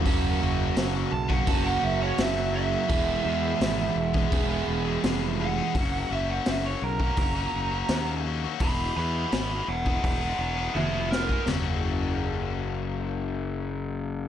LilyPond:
<<
  \new Staff \with { instrumentName = "Lead electric guitar" } { \time 4/4 \key fis \mixolydian \tempo 4 = 84 r4. a''16 fis''16 a''16 fis''16 e''16 cis''16 e''8 e''8~ | e''2~ e''8 r4 fis''8~ | fis''8 e''16 fis''16 e''16 cis''16 ais'2 r8 | <gis'' b''>8 <gis'' b''>8 <gis'' b''>8 <cis'' fis''>8 <cis'' fis''>8 <cis'' fis''>8 <gis' e''>8 ais'8 |
r1 | }
  \new Staff \with { instrumentName = "Overdriven electric guitar" } { \time 4/4 \key fis \mixolydian <fis ais cis' fis'>8 <fis ais cis' fis'>8 <fis ais cis' fis'>16 <ais cis' fis'>8 <ais cis' fis'>8 <ais cis' fis'>8 <ais cis' fis'>16 <fis ais cis' fis'>16 <ais cis' fis'>16 <fis ais cis' fis'>16 <ais cis' fis'>16 | <e, b, e gis b gis'>8 <e gis b gis'>8 <e, b, e gis b gis'>16 <e gis b gis'>8 <e gis b gis'>8 <e gis b gis'>8 <e gis b gis'>16 <e, b, e gis b gis'>16 <e gis b gis'>16 <e gis b gis'>16 <e gis b gis'>16 | <fis, cis fis ais cis' fis'>8 <fis ais cis' fis'>8 <fis, cis fis ais cis' fis'>16 <fis ais cis' fis'>8 <fis ais cis' fis'>8 <fis ais cis' fis'>8 <fis ais cis' fis'>16 <fis, cis fis ais cis' fis'>16 <fis ais cis' fis'>16 <fis ais cis' fis'>16 <fis ais cis' fis'>16 | <e, b, e gis b gis'>8 <e gis b gis'>8 <e, b, e gis b gis'>16 <e gis b gis'>8 <e gis b gis'>8 <e gis b gis'>8 <e gis b gis'>16 <e, b, e gis b gis'>16 <e gis b gis'>16 <e gis b gis'>16 <e gis b gis'>16 |
<fis, cis fis ais cis' fis'>1 | }
  \new Staff \with { instrumentName = "Overdriven electric guitar" } { \time 4/4 \key fis \mixolydian <fis, cis fis ais cis' fis'>2 <fis, cis fis ais cis' fis'>2 | <e gis b e' gis'>2 <e gis b e' gis'>2 | r1 | r1 |
r1 | }
  \new Staff \with { instrumentName = "Fingered electric bass" } { \clef bass \time 4/4 \key fis \mixolydian fis,,8 fis,,8 fis,,8 b,,8 fis,,8 fis,,8 fis,,4 | e,,8 e,8 gis,,8 e,,8 e,,8 e,,8 eis,,4 | fis,,8 fis,,8 fis,,8 b,,8 fis,,8 fis,,8 dis,4 | e,,8 e,8 gis,,8 e,,8 e,,8 e,,8 eis,,4 |
fis,,1 | }
  \new DrumStaff \with { instrumentName = "Drums" } \drummode { \time 4/4 <hho bd>4 <hho sn>8. bd16 <hho bd>4 <hho sn>4 | <hho bd>4 <hho sn>8. bd16 <hho bd>4 <hho sn>4 | <hho bd>4 <hho sn>8. bd16 <hho bd>4 <hho sn>4 | <hho bd>4 <hho sn>8. bd16 <hho bd>4 tommh8 sn16 bd16 |
<cymc sn tomfh>4 r4 r4 r4 | }
>>